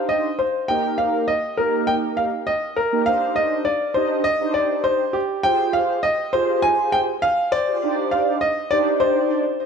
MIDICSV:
0, 0, Header, 1, 3, 480
1, 0, Start_track
1, 0, Key_signature, -3, "minor"
1, 0, Tempo, 594059
1, 566, Time_signature, 4, 2, 24, 8
1, 7804, End_track
2, 0, Start_track
2, 0, Title_t, "Grand piano"
2, 0, Program_c, 0, 0
2, 71, Note_on_c, 0, 75, 90
2, 313, Note_on_c, 0, 72, 85
2, 326, Note_off_c, 0, 75, 0
2, 552, Note_on_c, 0, 79, 99
2, 567, Note_off_c, 0, 72, 0
2, 782, Note_off_c, 0, 79, 0
2, 790, Note_on_c, 0, 77, 90
2, 1021, Note_off_c, 0, 77, 0
2, 1031, Note_on_c, 0, 75, 91
2, 1272, Note_on_c, 0, 70, 84
2, 1286, Note_off_c, 0, 75, 0
2, 1502, Note_off_c, 0, 70, 0
2, 1512, Note_on_c, 0, 79, 102
2, 1567, Note_off_c, 0, 79, 0
2, 1752, Note_on_c, 0, 77, 93
2, 1808, Note_off_c, 0, 77, 0
2, 1993, Note_on_c, 0, 75, 94
2, 2234, Note_on_c, 0, 70, 89
2, 2247, Note_off_c, 0, 75, 0
2, 2463, Note_off_c, 0, 70, 0
2, 2472, Note_on_c, 0, 77, 105
2, 2712, Note_on_c, 0, 75, 96
2, 2726, Note_off_c, 0, 77, 0
2, 2947, Note_on_c, 0, 74, 91
2, 2966, Note_off_c, 0, 75, 0
2, 3187, Note_on_c, 0, 72, 94
2, 3204, Note_off_c, 0, 74, 0
2, 3419, Note_off_c, 0, 72, 0
2, 3427, Note_on_c, 0, 75, 103
2, 3659, Note_off_c, 0, 75, 0
2, 3668, Note_on_c, 0, 74, 97
2, 3909, Note_on_c, 0, 72, 96
2, 3924, Note_off_c, 0, 74, 0
2, 4146, Note_on_c, 0, 67, 88
2, 4165, Note_off_c, 0, 72, 0
2, 4391, Note_on_c, 0, 79, 111
2, 4404, Note_off_c, 0, 67, 0
2, 4632, Note_on_c, 0, 77, 100
2, 4646, Note_off_c, 0, 79, 0
2, 4862, Note_off_c, 0, 77, 0
2, 4872, Note_on_c, 0, 75, 101
2, 5113, Note_on_c, 0, 72, 100
2, 5126, Note_off_c, 0, 75, 0
2, 5342, Note_off_c, 0, 72, 0
2, 5352, Note_on_c, 0, 80, 114
2, 5594, Note_on_c, 0, 79, 103
2, 5606, Note_off_c, 0, 80, 0
2, 5650, Note_off_c, 0, 79, 0
2, 5835, Note_on_c, 0, 77, 108
2, 6074, Note_on_c, 0, 72, 90
2, 6076, Note_on_c, 0, 74, 115
2, 6088, Note_off_c, 0, 77, 0
2, 6303, Note_off_c, 0, 72, 0
2, 6556, Note_on_c, 0, 77, 99
2, 6576, Note_off_c, 0, 74, 0
2, 6795, Note_on_c, 0, 75, 99
2, 6808, Note_off_c, 0, 77, 0
2, 7023, Note_off_c, 0, 75, 0
2, 7034, Note_on_c, 0, 74, 99
2, 7090, Note_off_c, 0, 74, 0
2, 7272, Note_on_c, 0, 72, 98
2, 7804, Note_off_c, 0, 72, 0
2, 7804, End_track
3, 0, Start_track
3, 0, Title_t, "Analog polysynth"
3, 0, Program_c, 1, 90
3, 0, Note_on_c, 1, 62, 74
3, 0, Note_on_c, 1, 63, 67
3, 0, Note_on_c, 1, 67, 64
3, 0, Note_on_c, 1, 72, 81
3, 231, Note_off_c, 1, 62, 0
3, 232, Note_off_c, 1, 63, 0
3, 233, Note_off_c, 1, 67, 0
3, 233, Note_off_c, 1, 72, 0
3, 563, Note_on_c, 1, 58, 76
3, 566, Note_on_c, 1, 63, 69
3, 566, Note_on_c, 1, 67, 71
3, 568, Note_on_c, 1, 70, 84
3, 999, Note_off_c, 1, 58, 0
3, 1000, Note_off_c, 1, 63, 0
3, 1000, Note_off_c, 1, 67, 0
3, 1001, Note_off_c, 1, 70, 0
3, 1285, Note_on_c, 1, 58, 78
3, 1287, Note_on_c, 1, 63, 70
3, 1287, Note_on_c, 1, 67, 70
3, 1288, Note_on_c, 1, 70, 81
3, 1864, Note_off_c, 1, 58, 0
3, 1865, Note_off_c, 1, 63, 0
3, 1866, Note_off_c, 1, 67, 0
3, 1866, Note_off_c, 1, 70, 0
3, 2363, Note_on_c, 1, 58, 75
3, 2365, Note_on_c, 1, 63, 70
3, 2366, Note_on_c, 1, 67, 72
3, 2367, Note_on_c, 1, 70, 87
3, 2437, Note_off_c, 1, 58, 0
3, 2438, Note_off_c, 1, 63, 0
3, 2438, Note_off_c, 1, 67, 0
3, 2439, Note_off_c, 1, 70, 0
3, 2484, Note_on_c, 1, 62, 78
3, 2485, Note_on_c, 1, 63, 72
3, 2487, Note_on_c, 1, 67, 70
3, 2488, Note_on_c, 1, 72, 84
3, 2919, Note_off_c, 1, 62, 0
3, 2920, Note_off_c, 1, 63, 0
3, 2921, Note_off_c, 1, 67, 0
3, 2921, Note_off_c, 1, 72, 0
3, 3204, Note_on_c, 1, 62, 80
3, 3205, Note_on_c, 1, 63, 73
3, 3207, Note_on_c, 1, 67, 74
3, 3208, Note_on_c, 1, 75, 85
3, 3422, Note_off_c, 1, 62, 0
3, 3422, Note_off_c, 1, 63, 0
3, 3423, Note_off_c, 1, 67, 0
3, 3424, Note_off_c, 1, 75, 0
3, 3563, Note_on_c, 1, 62, 73
3, 3564, Note_on_c, 1, 63, 71
3, 3566, Note_on_c, 1, 67, 69
3, 3567, Note_on_c, 1, 72, 86
3, 4071, Note_off_c, 1, 62, 0
3, 4072, Note_off_c, 1, 63, 0
3, 4072, Note_off_c, 1, 67, 0
3, 4073, Note_off_c, 1, 72, 0
3, 4404, Note_on_c, 1, 65, 77
3, 4404, Note_on_c, 1, 67, 71
3, 4407, Note_on_c, 1, 68, 71
3, 4407, Note_on_c, 1, 72, 88
3, 4839, Note_off_c, 1, 65, 0
3, 4839, Note_off_c, 1, 67, 0
3, 4841, Note_off_c, 1, 68, 0
3, 4841, Note_off_c, 1, 72, 0
3, 5125, Note_on_c, 1, 65, 76
3, 5125, Note_on_c, 1, 67, 73
3, 5127, Note_on_c, 1, 68, 73
3, 5129, Note_on_c, 1, 72, 89
3, 5704, Note_off_c, 1, 65, 0
3, 5704, Note_off_c, 1, 67, 0
3, 5706, Note_off_c, 1, 68, 0
3, 5706, Note_off_c, 1, 72, 0
3, 6205, Note_on_c, 1, 65, 78
3, 6207, Note_on_c, 1, 67, 70
3, 6208, Note_on_c, 1, 68, 73
3, 6209, Note_on_c, 1, 72, 84
3, 6278, Note_off_c, 1, 65, 0
3, 6279, Note_off_c, 1, 67, 0
3, 6279, Note_off_c, 1, 68, 0
3, 6280, Note_off_c, 1, 72, 0
3, 6327, Note_on_c, 1, 62, 79
3, 6329, Note_on_c, 1, 63, 73
3, 6329, Note_on_c, 1, 67, 73
3, 6330, Note_on_c, 1, 72, 71
3, 6331, Note_on_c, 1, 74, 86
3, 6761, Note_off_c, 1, 62, 0
3, 6761, Note_off_c, 1, 63, 0
3, 6762, Note_off_c, 1, 67, 0
3, 6762, Note_off_c, 1, 72, 0
3, 6763, Note_off_c, 1, 74, 0
3, 7045, Note_on_c, 1, 62, 81
3, 7046, Note_on_c, 1, 63, 74
3, 7047, Note_on_c, 1, 67, 70
3, 7048, Note_on_c, 1, 72, 75
3, 7049, Note_on_c, 1, 74, 90
3, 7625, Note_off_c, 1, 62, 0
3, 7625, Note_off_c, 1, 63, 0
3, 7626, Note_off_c, 1, 67, 0
3, 7626, Note_off_c, 1, 72, 0
3, 7626, Note_off_c, 1, 74, 0
3, 7804, End_track
0, 0, End_of_file